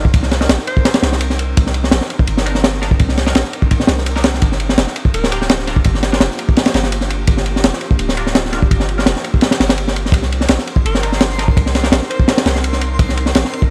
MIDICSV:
0, 0, Header, 1, 7, 480
1, 0, Start_track
1, 0, Key_signature, -3, "minor"
1, 0, Tempo, 357143
1, 184, Time_signature, 4, 2, 24, 8
1, 18418, End_track
2, 0, Start_track
2, 0, Title_t, "Synth texture"
2, 0, Program_c, 0, 99
2, 13623, Note_on_c, 0, 84, 81
2, 18418, Note_off_c, 0, 84, 0
2, 18418, End_track
3, 0, Start_track
3, 0, Title_t, "Alto saxophone"
3, 0, Program_c, 1, 65
3, 903, Note_on_c, 1, 72, 92
3, 1578, Note_off_c, 1, 72, 0
3, 6908, Note_on_c, 1, 70, 93
3, 7138, Note_off_c, 1, 70, 0
3, 7146, Note_on_c, 1, 67, 88
3, 7226, Note_off_c, 1, 67, 0
3, 7272, Note_on_c, 1, 67, 77
3, 7344, Note_off_c, 1, 67, 0
3, 14589, Note_on_c, 1, 70, 92
3, 14877, Note_off_c, 1, 70, 0
3, 16261, Note_on_c, 1, 72, 90
3, 16937, Note_off_c, 1, 72, 0
3, 18418, End_track
4, 0, Start_track
4, 0, Title_t, "Ambient pad"
4, 0, Program_c, 2, 92
4, 0, Note_on_c, 2, 60, 84
4, 0, Note_on_c, 2, 62, 77
4, 0, Note_on_c, 2, 63, 77
4, 0, Note_on_c, 2, 70, 89
4, 5886, Note_off_c, 2, 70, 0
4, 5887, Note_off_c, 2, 60, 0
4, 5888, Note_off_c, 2, 63, 0
4, 5946, Note_on_c, 2, 67, 93
4, 5947, Note_on_c, 2, 58, 84
4, 5949, Note_on_c, 2, 65, 75
4, 13567, Note_off_c, 2, 62, 0
4, 13571, Note_off_c, 2, 67, 0
4, 13572, Note_off_c, 2, 58, 0
4, 13573, Note_off_c, 2, 65, 0
4, 13627, Note_on_c, 2, 60, 83
4, 13627, Note_on_c, 2, 63, 80
4, 13629, Note_on_c, 2, 70, 93
4, 13630, Note_on_c, 2, 62, 80
4, 18418, Note_off_c, 2, 60, 0
4, 18418, Note_off_c, 2, 62, 0
4, 18418, Note_off_c, 2, 63, 0
4, 18418, Note_off_c, 2, 70, 0
4, 18418, End_track
5, 0, Start_track
5, 0, Title_t, "Synth stab"
5, 0, Program_c, 3, 62
5, 546, Note_on_c, 3, 62, 77
5, 546, Note_on_c, 3, 63, 69
5, 546, Note_on_c, 3, 70, 80
5, 685, Note_off_c, 3, 62, 0
5, 685, Note_off_c, 3, 63, 0
5, 685, Note_off_c, 3, 70, 0
5, 3301, Note_on_c, 3, 63, 78
5, 3302, Note_on_c, 3, 62, 89
5, 3302, Note_on_c, 3, 70, 97
5, 3530, Note_off_c, 3, 63, 0
5, 3531, Note_off_c, 3, 62, 0
5, 3531, Note_off_c, 3, 70, 0
5, 3784, Note_on_c, 3, 62, 80
5, 3784, Note_on_c, 3, 63, 75
5, 3785, Note_on_c, 3, 70, 91
5, 3931, Note_off_c, 3, 62, 0
5, 3931, Note_off_c, 3, 63, 0
5, 3932, Note_off_c, 3, 70, 0
5, 4384, Note_on_c, 3, 63, 71
5, 4385, Note_on_c, 3, 62, 74
5, 4385, Note_on_c, 3, 70, 81
5, 4524, Note_off_c, 3, 62, 0
5, 4524, Note_off_c, 3, 63, 0
5, 4525, Note_off_c, 3, 70, 0
5, 5584, Note_on_c, 3, 63, 74
5, 5584, Note_on_c, 3, 70, 87
5, 5585, Note_on_c, 3, 62, 78
5, 5724, Note_off_c, 3, 62, 0
5, 5724, Note_off_c, 3, 63, 0
5, 5724, Note_off_c, 3, 70, 0
5, 7142, Note_on_c, 3, 65, 78
5, 7142, Note_on_c, 3, 70, 96
5, 7143, Note_on_c, 3, 62, 87
5, 7371, Note_off_c, 3, 62, 0
5, 7371, Note_off_c, 3, 65, 0
5, 7371, Note_off_c, 3, 70, 0
5, 7621, Note_on_c, 3, 70, 94
5, 7622, Note_on_c, 3, 62, 83
5, 7622, Note_on_c, 3, 65, 74
5, 7770, Note_off_c, 3, 62, 0
5, 7770, Note_off_c, 3, 65, 0
5, 7770, Note_off_c, 3, 70, 0
5, 8229, Note_on_c, 3, 62, 73
5, 8229, Note_on_c, 3, 65, 68
5, 8229, Note_on_c, 3, 70, 83
5, 8366, Note_off_c, 3, 62, 0
5, 8366, Note_off_c, 3, 65, 0
5, 8366, Note_off_c, 3, 70, 0
5, 10978, Note_on_c, 3, 65, 80
5, 10978, Note_on_c, 3, 70, 95
5, 10979, Note_on_c, 3, 62, 87
5, 11209, Note_off_c, 3, 65, 0
5, 11209, Note_off_c, 3, 70, 0
5, 11210, Note_off_c, 3, 62, 0
5, 11458, Note_on_c, 3, 65, 74
5, 11459, Note_on_c, 3, 62, 84
5, 11459, Note_on_c, 3, 70, 91
5, 11608, Note_off_c, 3, 65, 0
5, 11609, Note_off_c, 3, 62, 0
5, 11609, Note_off_c, 3, 70, 0
5, 12065, Note_on_c, 3, 62, 74
5, 12067, Note_on_c, 3, 65, 70
5, 12068, Note_on_c, 3, 70, 85
5, 12205, Note_off_c, 3, 62, 0
5, 12205, Note_off_c, 3, 65, 0
5, 12206, Note_off_c, 3, 70, 0
5, 14818, Note_on_c, 3, 70, 96
5, 14819, Note_on_c, 3, 62, 85
5, 14819, Note_on_c, 3, 63, 79
5, 15049, Note_off_c, 3, 62, 0
5, 15049, Note_off_c, 3, 63, 0
5, 15049, Note_off_c, 3, 70, 0
5, 15301, Note_on_c, 3, 62, 83
5, 15301, Note_on_c, 3, 63, 77
5, 15302, Note_on_c, 3, 70, 91
5, 15450, Note_off_c, 3, 62, 0
5, 15450, Note_off_c, 3, 63, 0
5, 15450, Note_off_c, 3, 70, 0
5, 15907, Note_on_c, 3, 62, 75
5, 15907, Note_on_c, 3, 70, 84
5, 15908, Note_on_c, 3, 63, 68
5, 16045, Note_off_c, 3, 62, 0
5, 16045, Note_off_c, 3, 70, 0
5, 16046, Note_off_c, 3, 63, 0
5, 18418, End_track
6, 0, Start_track
6, 0, Title_t, "808-style bass"
6, 0, Program_c, 4, 38
6, 0, Note_on_c, 4, 31, 102
6, 164, Note_off_c, 4, 31, 0
6, 187, Note_on_c, 4, 36, 105
6, 647, Note_off_c, 4, 36, 0
6, 665, Note_on_c, 4, 34, 91
6, 779, Note_off_c, 4, 34, 0
6, 1382, Note_on_c, 4, 36, 87
6, 2085, Note_off_c, 4, 36, 0
6, 2115, Note_on_c, 4, 36, 100
6, 2572, Note_off_c, 4, 36, 0
6, 2584, Note_on_c, 4, 34, 91
6, 2698, Note_off_c, 4, 34, 0
6, 3064, Note_on_c, 4, 31, 99
6, 4006, Note_off_c, 4, 31, 0
6, 4032, Note_on_c, 4, 36, 101
6, 4490, Note_off_c, 4, 36, 0
6, 4504, Note_on_c, 4, 34, 89
6, 4618, Note_off_c, 4, 34, 0
6, 5222, Note_on_c, 4, 36, 84
6, 5925, Note_off_c, 4, 36, 0
6, 5944, Note_on_c, 4, 31, 98
6, 6406, Note_off_c, 4, 31, 0
6, 6422, Note_on_c, 4, 29, 88
6, 6537, Note_off_c, 4, 29, 0
6, 6901, Note_on_c, 4, 26, 96
6, 7845, Note_off_c, 4, 26, 0
6, 7870, Note_on_c, 4, 31, 99
6, 8329, Note_off_c, 4, 31, 0
6, 8340, Note_on_c, 4, 29, 90
6, 8456, Note_off_c, 4, 29, 0
6, 9064, Note_on_c, 4, 31, 91
6, 9766, Note_off_c, 4, 31, 0
6, 9782, Note_on_c, 4, 31, 105
6, 10245, Note_off_c, 4, 31, 0
6, 10264, Note_on_c, 4, 29, 89
6, 10378, Note_off_c, 4, 29, 0
6, 10740, Note_on_c, 4, 26, 102
6, 11684, Note_off_c, 4, 26, 0
6, 11705, Note_on_c, 4, 31, 99
6, 12167, Note_off_c, 4, 31, 0
6, 12185, Note_on_c, 4, 29, 87
6, 12298, Note_off_c, 4, 29, 0
6, 12904, Note_on_c, 4, 31, 84
6, 13594, Note_off_c, 4, 31, 0
6, 13602, Note_on_c, 4, 36, 102
6, 14075, Note_off_c, 4, 36, 0
6, 14103, Note_on_c, 4, 34, 91
6, 14217, Note_off_c, 4, 34, 0
6, 14585, Note_on_c, 4, 31, 100
6, 15526, Note_off_c, 4, 31, 0
6, 15547, Note_on_c, 4, 36, 104
6, 16008, Note_off_c, 4, 36, 0
6, 16025, Note_on_c, 4, 34, 91
6, 16138, Note_off_c, 4, 34, 0
6, 16742, Note_on_c, 4, 36, 90
6, 17445, Note_off_c, 4, 36, 0
6, 17461, Note_on_c, 4, 36, 101
6, 17924, Note_off_c, 4, 36, 0
6, 17947, Note_on_c, 4, 34, 91
6, 18059, Note_off_c, 4, 34, 0
6, 18418, End_track
7, 0, Start_track
7, 0, Title_t, "Drums"
7, 67, Note_on_c, 9, 36, 88
7, 183, Note_on_c, 9, 51, 92
7, 187, Note_off_c, 9, 36, 0
7, 187, Note_on_c, 9, 36, 117
7, 306, Note_on_c, 9, 38, 45
7, 318, Note_off_c, 9, 51, 0
7, 321, Note_off_c, 9, 36, 0
7, 421, Note_on_c, 9, 51, 61
7, 424, Note_off_c, 9, 38, 0
7, 424, Note_on_c, 9, 38, 55
7, 548, Note_off_c, 9, 38, 0
7, 548, Note_on_c, 9, 38, 52
7, 555, Note_off_c, 9, 51, 0
7, 663, Note_off_c, 9, 38, 0
7, 663, Note_on_c, 9, 38, 119
7, 663, Note_on_c, 9, 51, 99
7, 786, Note_off_c, 9, 38, 0
7, 786, Note_on_c, 9, 38, 43
7, 797, Note_off_c, 9, 51, 0
7, 904, Note_on_c, 9, 51, 69
7, 920, Note_off_c, 9, 38, 0
7, 1032, Note_on_c, 9, 36, 102
7, 1038, Note_off_c, 9, 51, 0
7, 1144, Note_on_c, 9, 38, 101
7, 1145, Note_on_c, 9, 51, 86
7, 1166, Note_off_c, 9, 36, 0
7, 1262, Note_off_c, 9, 51, 0
7, 1262, Note_on_c, 9, 51, 85
7, 1267, Note_off_c, 9, 38, 0
7, 1267, Note_on_c, 9, 38, 113
7, 1378, Note_off_c, 9, 38, 0
7, 1378, Note_on_c, 9, 38, 106
7, 1390, Note_off_c, 9, 51, 0
7, 1390, Note_on_c, 9, 51, 70
7, 1509, Note_off_c, 9, 38, 0
7, 1509, Note_on_c, 9, 38, 53
7, 1524, Note_off_c, 9, 51, 0
7, 1620, Note_on_c, 9, 51, 87
7, 1643, Note_off_c, 9, 38, 0
7, 1749, Note_on_c, 9, 38, 39
7, 1754, Note_off_c, 9, 51, 0
7, 1868, Note_on_c, 9, 51, 75
7, 1884, Note_off_c, 9, 38, 0
7, 2003, Note_off_c, 9, 51, 0
7, 2111, Note_on_c, 9, 51, 90
7, 2115, Note_on_c, 9, 36, 123
7, 2238, Note_on_c, 9, 38, 50
7, 2245, Note_off_c, 9, 51, 0
7, 2250, Note_off_c, 9, 36, 0
7, 2340, Note_on_c, 9, 51, 64
7, 2372, Note_off_c, 9, 38, 0
7, 2471, Note_on_c, 9, 38, 48
7, 2475, Note_off_c, 9, 51, 0
7, 2573, Note_off_c, 9, 38, 0
7, 2573, Note_on_c, 9, 38, 124
7, 2579, Note_on_c, 9, 51, 85
7, 2702, Note_off_c, 9, 38, 0
7, 2702, Note_on_c, 9, 38, 61
7, 2714, Note_off_c, 9, 51, 0
7, 2823, Note_on_c, 9, 51, 66
7, 2836, Note_off_c, 9, 38, 0
7, 2948, Note_on_c, 9, 36, 101
7, 2957, Note_off_c, 9, 51, 0
7, 3055, Note_on_c, 9, 51, 88
7, 3082, Note_off_c, 9, 36, 0
7, 3190, Note_off_c, 9, 51, 0
7, 3191, Note_on_c, 9, 38, 62
7, 3310, Note_on_c, 9, 51, 70
7, 3326, Note_off_c, 9, 38, 0
7, 3426, Note_on_c, 9, 38, 46
7, 3445, Note_off_c, 9, 51, 0
7, 3546, Note_off_c, 9, 38, 0
7, 3546, Note_on_c, 9, 38, 119
7, 3550, Note_on_c, 9, 51, 94
7, 3673, Note_off_c, 9, 38, 0
7, 3673, Note_on_c, 9, 38, 38
7, 3684, Note_off_c, 9, 51, 0
7, 3790, Note_off_c, 9, 38, 0
7, 3790, Note_on_c, 9, 38, 37
7, 3797, Note_on_c, 9, 51, 62
7, 3913, Note_on_c, 9, 36, 91
7, 3925, Note_off_c, 9, 38, 0
7, 3932, Note_off_c, 9, 51, 0
7, 4025, Note_on_c, 9, 51, 82
7, 4033, Note_off_c, 9, 36, 0
7, 4033, Note_on_c, 9, 36, 104
7, 4149, Note_on_c, 9, 38, 40
7, 4159, Note_off_c, 9, 51, 0
7, 4168, Note_off_c, 9, 36, 0
7, 4266, Note_on_c, 9, 51, 58
7, 4269, Note_off_c, 9, 38, 0
7, 4269, Note_on_c, 9, 38, 58
7, 4389, Note_off_c, 9, 38, 0
7, 4389, Note_on_c, 9, 38, 54
7, 4401, Note_off_c, 9, 51, 0
7, 4502, Note_on_c, 9, 51, 89
7, 4510, Note_off_c, 9, 38, 0
7, 4510, Note_on_c, 9, 38, 123
7, 4626, Note_off_c, 9, 38, 0
7, 4626, Note_on_c, 9, 38, 40
7, 4636, Note_off_c, 9, 51, 0
7, 4746, Note_on_c, 9, 51, 65
7, 4760, Note_off_c, 9, 38, 0
7, 4868, Note_on_c, 9, 36, 94
7, 4881, Note_off_c, 9, 51, 0
7, 4984, Note_on_c, 9, 51, 83
7, 4991, Note_off_c, 9, 36, 0
7, 4991, Note_on_c, 9, 36, 120
7, 5105, Note_on_c, 9, 38, 58
7, 5118, Note_off_c, 9, 51, 0
7, 5125, Note_off_c, 9, 36, 0
7, 5207, Note_off_c, 9, 38, 0
7, 5207, Note_on_c, 9, 38, 115
7, 5227, Note_on_c, 9, 51, 63
7, 5341, Note_off_c, 9, 38, 0
7, 5347, Note_on_c, 9, 38, 49
7, 5362, Note_off_c, 9, 51, 0
7, 5459, Note_on_c, 9, 51, 94
7, 5481, Note_off_c, 9, 38, 0
7, 5592, Note_on_c, 9, 38, 40
7, 5593, Note_off_c, 9, 51, 0
7, 5694, Note_on_c, 9, 51, 78
7, 5701, Note_off_c, 9, 38, 0
7, 5701, Note_on_c, 9, 38, 100
7, 5829, Note_off_c, 9, 51, 0
7, 5832, Note_off_c, 9, 38, 0
7, 5832, Note_on_c, 9, 38, 48
7, 5936, Note_on_c, 9, 51, 85
7, 5944, Note_on_c, 9, 36, 103
7, 5967, Note_off_c, 9, 38, 0
7, 6070, Note_off_c, 9, 51, 0
7, 6074, Note_on_c, 9, 38, 43
7, 6079, Note_off_c, 9, 36, 0
7, 6179, Note_on_c, 9, 51, 69
7, 6208, Note_off_c, 9, 38, 0
7, 6308, Note_on_c, 9, 38, 55
7, 6314, Note_off_c, 9, 51, 0
7, 6421, Note_off_c, 9, 38, 0
7, 6421, Note_on_c, 9, 38, 111
7, 6421, Note_on_c, 9, 51, 85
7, 6547, Note_off_c, 9, 38, 0
7, 6547, Note_on_c, 9, 38, 50
7, 6555, Note_off_c, 9, 51, 0
7, 6664, Note_on_c, 9, 51, 68
7, 6682, Note_off_c, 9, 38, 0
7, 6788, Note_on_c, 9, 36, 86
7, 6798, Note_off_c, 9, 51, 0
7, 6908, Note_on_c, 9, 51, 91
7, 6923, Note_off_c, 9, 36, 0
7, 7040, Note_on_c, 9, 38, 59
7, 7042, Note_off_c, 9, 51, 0
7, 7150, Note_on_c, 9, 51, 74
7, 7174, Note_off_c, 9, 38, 0
7, 7280, Note_on_c, 9, 38, 40
7, 7284, Note_off_c, 9, 51, 0
7, 7385, Note_on_c, 9, 51, 97
7, 7390, Note_off_c, 9, 38, 0
7, 7390, Note_on_c, 9, 38, 114
7, 7514, Note_off_c, 9, 38, 0
7, 7514, Note_on_c, 9, 38, 37
7, 7520, Note_off_c, 9, 51, 0
7, 7625, Note_on_c, 9, 51, 65
7, 7626, Note_off_c, 9, 38, 0
7, 7626, Note_on_c, 9, 38, 35
7, 7746, Note_on_c, 9, 36, 82
7, 7759, Note_off_c, 9, 51, 0
7, 7761, Note_off_c, 9, 38, 0
7, 7854, Note_on_c, 9, 51, 89
7, 7870, Note_off_c, 9, 36, 0
7, 7870, Note_on_c, 9, 36, 113
7, 7988, Note_off_c, 9, 51, 0
7, 7990, Note_on_c, 9, 38, 44
7, 8005, Note_off_c, 9, 36, 0
7, 8100, Note_on_c, 9, 51, 62
7, 8101, Note_off_c, 9, 38, 0
7, 8101, Note_on_c, 9, 38, 53
7, 8235, Note_off_c, 9, 38, 0
7, 8235, Note_off_c, 9, 51, 0
7, 8239, Note_on_c, 9, 38, 58
7, 8339, Note_off_c, 9, 38, 0
7, 8339, Note_on_c, 9, 38, 122
7, 8343, Note_on_c, 9, 51, 96
7, 8473, Note_off_c, 9, 38, 0
7, 8477, Note_off_c, 9, 51, 0
7, 8480, Note_on_c, 9, 38, 40
7, 8584, Note_on_c, 9, 51, 73
7, 8615, Note_off_c, 9, 38, 0
7, 8718, Note_off_c, 9, 51, 0
7, 8718, Note_on_c, 9, 36, 102
7, 8824, Note_on_c, 9, 51, 74
7, 8834, Note_on_c, 9, 38, 102
7, 8853, Note_off_c, 9, 36, 0
7, 8945, Note_off_c, 9, 51, 0
7, 8945, Note_on_c, 9, 51, 76
7, 8951, Note_off_c, 9, 38, 0
7, 8951, Note_on_c, 9, 38, 114
7, 9060, Note_off_c, 9, 51, 0
7, 9060, Note_on_c, 9, 51, 67
7, 9071, Note_off_c, 9, 38, 0
7, 9071, Note_on_c, 9, 38, 113
7, 9185, Note_off_c, 9, 38, 0
7, 9185, Note_on_c, 9, 38, 58
7, 9194, Note_off_c, 9, 51, 0
7, 9301, Note_on_c, 9, 51, 96
7, 9320, Note_off_c, 9, 38, 0
7, 9420, Note_on_c, 9, 38, 39
7, 9435, Note_off_c, 9, 51, 0
7, 9547, Note_on_c, 9, 51, 72
7, 9554, Note_off_c, 9, 38, 0
7, 9681, Note_off_c, 9, 51, 0
7, 9775, Note_on_c, 9, 51, 91
7, 9782, Note_on_c, 9, 36, 102
7, 9909, Note_off_c, 9, 51, 0
7, 9909, Note_on_c, 9, 38, 52
7, 9917, Note_off_c, 9, 36, 0
7, 10023, Note_on_c, 9, 51, 64
7, 10043, Note_off_c, 9, 38, 0
7, 10157, Note_off_c, 9, 51, 0
7, 10162, Note_on_c, 9, 38, 48
7, 10264, Note_on_c, 9, 51, 97
7, 10270, Note_off_c, 9, 38, 0
7, 10270, Note_on_c, 9, 38, 119
7, 10395, Note_off_c, 9, 38, 0
7, 10395, Note_on_c, 9, 38, 56
7, 10399, Note_off_c, 9, 51, 0
7, 10494, Note_on_c, 9, 51, 61
7, 10529, Note_off_c, 9, 38, 0
7, 10628, Note_off_c, 9, 51, 0
7, 10628, Note_on_c, 9, 36, 101
7, 10737, Note_on_c, 9, 51, 89
7, 10762, Note_off_c, 9, 36, 0
7, 10871, Note_off_c, 9, 51, 0
7, 10871, Note_on_c, 9, 38, 58
7, 10981, Note_on_c, 9, 51, 72
7, 11005, Note_off_c, 9, 38, 0
7, 11110, Note_on_c, 9, 38, 41
7, 11115, Note_off_c, 9, 51, 0
7, 11222, Note_on_c, 9, 51, 88
7, 11223, Note_off_c, 9, 38, 0
7, 11223, Note_on_c, 9, 38, 115
7, 11357, Note_off_c, 9, 38, 0
7, 11357, Note_off_c, 9, 51, 0
7, 11362, Note_on_c, 9, 38, 43
7, 11457, Note_off_c, 9, 38, 0
7, 11457, Note_on_c, 9, 38, 36
7, 11460, Note_on_c, 9, 51, 65
7, 11591, Note_off_c, 9, 38, 0
7, 11591, Note_on_c, 9, 36, 98
7, 11595, Note_off_c, 9, 51, 0
7, 11707, Note_off_c, 9, 36, 0
7, 11707, Note_on_c, 9, 36, 110
7, 11707, Note_on_c, 9, 51, 85
7, 11825, Note_on_c, 9, 38, 48
7, 11841, Note_off_c, 9, 51, 0
7, 11842, Note_off_c, 9, 36, 0
7, 11943, Note_on_c, 9, 51, 59
7, 11959, Note_off_c, 9, 38, 0
7, 12077, Note_off_c, 9, 51, 0
7, 12081, Note_on_c, 9, 38, 47
7, 12178, Note_off_c, 9, 38, 0
7, 12178, Note_on_c, 9, 38, 100
7, 12183, Note_on_c, 9, 51, 80
7, 12313, Note_off_c, 9, 38, 0
7, 12313, Note_on_c, 9, 38, 52
7, 12317, Note_off_c, 9, 51, 0
7, 12423, Note_on_c, 9, 51, 65
7, 12448, Note_off_c, 9, 38, 0
7, 12552, Note_on_c, 9, 36, 77
7, 12558, Note_off_c, 9, 51, 0
7, 12648, Note_on_c, 9, 51, 74
7, 12664, Note_on_c, 9, 38, 102
7, 12686, Note_off_c, 9, 36, 0
7, 12782, Note_off_c, 9, 51, 0
7, 12783, Note_off_c, 9, 38, 0
7, 12783, Note_on_c, 9, 38, 93
7, 12797, Note_on_c, 9, 51, 81
7, 12905, Note_off_c, 9, 38, 0
7, 12905, Note_on_c, 9, 38, 97
7, 12910, Note_off_c, 9, 51, 0
7, 12910, Note_on_c, 9, 51, 82
7, 13029, Note_off_c, 9, 38, 0
7, 13029, Note_on_c, 9, 38, 105
7, 13036, Note_off_c, 9, 51, 0
7, 13036, Note_on_c, 9, 51, 86
7, 13140, Note_off_c, 9, 51, 0
7, 13140, Note_on_c, 9, 51, 83
7, 13163, Note_off_c, 9, 38, 0
7, 13274, Note_off_c, 9, 51, 0
7, 13275, Note_on_c, 9, 38, 53
7, 13389, Note_on_c, 9, 51, 65
7, 13410, Note_off_c, 9, 38, 0
7, 13517, Note_on_c, 9, 38, 39
7, 13523, Note_off_c, 9, 51, 0
7, 13603, Note_on_c, 9, 36, 120
7, 13623, Note_on_c, 9, 51, 92
7, 13651, Note_off_c, 9, 38, 0
7, 13738, Note_off_c, 9, 36, 0
7, 13741, Note_on_c, 9, 38, 42
7, 13757, Note_off_c, 9, 51, 0
7, 13875, Note_off_c, 9, 38, 0
7, 13875, Note_on_c, 9, 51, 64
7, 13988, Note_on_c, 9, 38, 51
7, 14009, Note_off_c, 9, 51, 0
7, 14091, Note_on_c, 9, 51, 100
7, 14103, Note_off_c, 9, 38, 0
7, 14103, Note_on_c, 9, 38, 113
7, 14225, Note_off_c, 9, 51, 0
7, 14230, Note_off_c, 9, 38, 0
7, 14230, Note_on_c, 9, 38, 53
7, 14345, Note_on_c, 9, 51, 66
7, 14364, Note_off_c, 9, 38, 0
7, 14463, Note_on_c, 9, 36, 98
7, 14479, Note_off_c, 9, 51, 0
7, 14590, Note_on_c, 9, 51, 87
7, 14598, Note_off_c, 9, 36, 0
7, 14714, Note_on_c, 9, 38, 59
7, 14725, Note_off_c, 9, 51, 0
7, 14825, Note_on_c, 9, 51, 69
7, 14848, Note_off_c, 9, 38, 0
7, 14951, Note_on_c, 9, 38, 45
7, 14960, Note_off_c, 9, 51, 0
7, 15060, Note_on_c, 9, 51, 80
7, 15063, Note_off_c, 9, 38, 0
7, 15063, Note_on_c, 9, 38, 108
7, 15182, Note_off_c, 9, 38, 0
7, 15182, Note_on_c, 9, 38, 39
7, 15195, Note_off_c, 9, 51, 0
7, 15296, Note_off_c, 9, 38, 0
7, 15296, Note_on_c, 9, 38, 38
7, 15309, Note_on_c, 9, 51, 69
7, 15430, Note_off_c, 9, 38, 0
7, 15432, Note_on_c, 9, 36, 91
7, 15443, Note_off_c, 9, 51, 0
7, 15549, Note_off_c, 9, 36, 0
7, 15549, Note_on_c, 9, 36, 108
7, 15551, Note_on_c, 9, 51, 86
7, 15672, Note_on_c, 9, 38, 47
7, 15683, Note_off_c, 9, 36, 0
7, 15686, Note_off_c, 9, 51, 0
7, 15790, Note_on_c, 9, 51, 61
7, 15792, Note_off_c, 9, 38, 0
7, 15792, Note_on_c, 9, 38, 55
7, 15906, Note_off_c, 9, 38, 0
7, 15906, Note_on_c, 9, 38, 57
7, 15924, Note_off_c, 9, 51, 0
7, 16019, Note_off_c, 9, 38, 0
7, 16019, Note_on_c, 9, 38, 126
7, 16027, Note_on_c, 9, 51, 95
7, 16153, Note_off_c, 9, 38, 0
7, 16157, Note_on_c, 9, 38, 43
7, 16161, Note_off_c, 9, 51, 0
7, 16271, Note_on_c, 9, 51, 72
7, 16292, Note_off_c, 9, 38, 0
7, 16391, Note_on_c, 9, 36, 99
7, 16405, Note_off_c, 9, 51, 0
7, 16502, Note_on_c, 9, 38, 109
7, 16509, Note_on_c, 9, 51, 84
7, 16525, Note_off_c, 9, 36, 0
7, 16632, Note_off_c, 9, 38, 0
7, 16632, Note_on_c, 9, 38, 98
7, 16638, Note_off_c, 9, 51, 0
7, 16638, Note_on_c, 9, 51, 81
7, 16742, Note_off_c, 9, 51, 0
7, 16742, Note_on_c, 9, 51, 65
7, 16747, Note_off_c, 9, 38, 0
7, 16747, Note_on_c, 9, 38, 108
7, 16874, Note_off_c, 9, 38, 0
7, 16874, Note_on_c, 9, 38, 51
7, 16877, Note_off_c, 9, 51, 0
7, 16988, Note_on_c, 9, 51, 85
7, 17008, Note_off_c, 9, 38, 0
7, 17106, Note_on_c, 9, 38, 39
7, 17122, Note_off_c, 9, 51, 0
7, 17221, Note_on_c, 9, 51, 68
7, 17240, Note_off_c, 9, 38, 0
7, 17355, Note_off_c, 9, 51, 0
7, 17459, Note_on_c, 9, 51, 93
7, 17462, Note_on_c, 9, 36, 112
7, 17593, Note_on_c, 9, 38, 46
7, 17594, Note_off_c, 9, 51, 0
7, 17596, Note_off_c, 9, 36, 0
7, 17705, Note_on_c, 9, 51, 72
7, 17727, Note_off_c, 9, 38, 0
7, 17820, Note_on_c, 9, 38, 53
7, 17839, Note_off_c, 9, 51, 0
7, 17939, Note_on_c, 9, 51, 84
7, 17949, Note_off_c, 9, 38, 0
7, 17949, Note_on_c, 9, 38, 127
7, 18072, Note_off_c, 9, 38, 0
7, 18072, Note_on_c, 9, 38, 62
7, 18074, Note_off_c, 9, 51, 0
7, 18190, Note_on_c, 9, 51, 64
7, 18206, Note_off_c, 9, 38, 0
7, 18307, Note_on_c, 9, 36, 97
7, 18324, Note_off_c, 9, 51, 0
7, 18418, Note_off_c, 9, 36, 0
7, 18418, End_track
0, 0, End_of_file